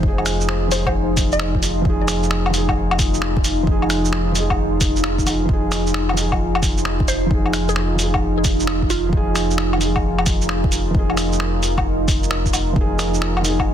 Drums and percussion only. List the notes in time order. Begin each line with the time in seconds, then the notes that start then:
0.03 kick
0.18 low woodblock
0.26 finger snap, open hi-hat, shaker
0.41 shaker
0.49 finger snap
0.71 open hi-hat, shaker
0.86 kick, low woodblock
1.17 kick, open hi-hat, shaker
1.32 shaker
1.39 finger snap
1.55 kick
1.63 open hi-hat, shaker
1.85 kick
2.08 finger snap, open hi-hat, shaker
2.23 shaker
2.31 finger snap
2.46 low woodblock
2.54 open hi-hat, shaker
2.68 kick, low woodblock
2.91 low woodblock
2.99 kick, open hi-hat, shaker
3.14 shaker
3.22 finger snap
3.37 kick
3.44 open hi-hat, shaker
3.67 kick
3.82 low woodblock
3.90 finger snap, open hi-hat, shaker
4.05 shaker
4.13 finger snap
4.35 open hi-hat, shaker
4.50 kick, low woodblock
4.81 kick, open hi-hat, shaker
4.96 shaker
5.04 finger snap
5.19 kick, shaker
5.27 open hi-hat, low woodblock, shaker
5.49 kick
5.72 finger snap, open hi-hat, shaker
5.87 shaker
5.94 finger snap
6.09 low woodblock
6.17 open hi-hat, shaker
6.32 kick, low woodblock
6.55 low woodblock
6.62 kick, open hi-hat, shaker
6.78 shaker
6.85 finger snap
7.00 kick
7.08 open hi-hat, shaker
7.31 kick
7.46 low woodblock
7.53 finger snap, open hi-hat, shaker
7.69 shaker
7.76 finger snap
7.99 open hi-hat, shaker
8.14 kick, low woodblock
8.44 kick, open hi-hat, shaker
8.60 shaker
8.67 finger snap
8.82 kick
8.90 open hi-hat, shaker
9.13 kick
9.36 finger snap, open hi-hat, shaker
9.51 shaker
9.58 finger snap
9.73 low woodblock
9.81 open hi-hat, shaker
9.96 kick, low woodblock
10.18 low woodblock
10.26 kick, open hi-hat, shaker
10.41 shaker
10.49 finger snap
10.64 kick
10.72 open hi-hat, shaker
10.95 kick
11.10 low woodblock
11.17 finger snap, open hi-hat, shaker
11.32 shaker
11.40 finger snap
11.63 open hi-hat, shaker
11.78 kick, low woodblock
12.08 kick, open hi-hat, shaker
12.23 shaker
12.31 finger snap
12.46 kick, shaker
12.53 open hi-hat, low woodblock, shaker
12.76 kick
12.99 finger snap, open hi-hat, shaker
13.14 shaker
13.22 finger snap
13.37 low woodblock
13.45 open hi-hat, shaker
13.59 kick, low woodblock